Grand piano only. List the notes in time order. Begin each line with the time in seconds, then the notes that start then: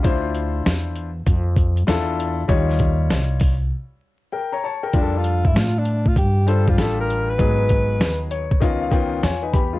0.03 D4 E4 F4 C5
1.87 D4 E4 F4 A4
2.48 G3 D#4 F4 C#5
4.32 A#4 G5
4.52 C#5 A#5
4.64 C#5 A5
4.83 A#4 G5
4.93 G3 D4 F4 G4
5.02 A4
6.47 G3 D4 F4 C5
6.78 G3 D4 F4 G4
7.38 F#3 B3 D#4 G#4
8.31 C#5
8.60 D#3 B3 C#4 F4 D#5
8.81 F5
8.91 D#3 B3 C#4 F4 G5
9.23 F4 C#5 G#5
9.43 D#4 B4 G#5
9.53 B3 G4 B5
9.73 G#3 F4